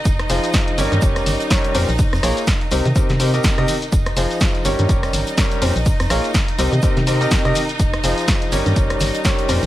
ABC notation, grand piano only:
X:1
M:4/4
L:1/16
Q:"Swing 16ths" 1/4=124
K:Fm
V:1 name="Grand piano"
z2 [F,EFAc]4 [G,DGBd]2 [G,DGBd]4 [G,DGBd]2 [B,,DGBc] z | z2 [B,FABd] z3 [C,EGBc] z [C,EGBc] z [C,EGBc] [C,EGBe]2 [C,EGBe] z2 | z2 [F,EFAc]4 [G,DGBd]2 [G,DGBd]4 [G,DGBd]2 [B,,DGBc] z | z2 [B,FABd] z3 [C,EGBc] z [C,EGBc] z [C,EGBc] [C,EGBe]2 [C,EGBe] z2 |
z2 [F,EFAc]4 [G,DGBd]2 [G,DGBd]4 [G,DGBd]2 [B,,DGBc] z |]